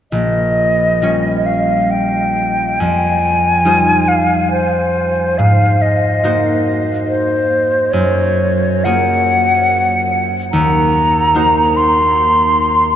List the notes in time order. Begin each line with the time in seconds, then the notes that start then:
0.12 A#1 D#5
1.02 G3 C#4 F4 C#5
1.46 F5
1.91 G5
2.80 F2 G#5
3.65 G3 D#4 F4 C5
4.08 F5
4.51 C5
5.38 G#2 F5
5.82 D#5
6.23 A#3 D#4 F#4 C5
7.07 C5
7.92 F#2 C#5
8.84 A#3 F4 G#4 C#5 F#5
10.52 D#2 A#5
11.35 A#3 D#4 F#4 C5
11.77 C6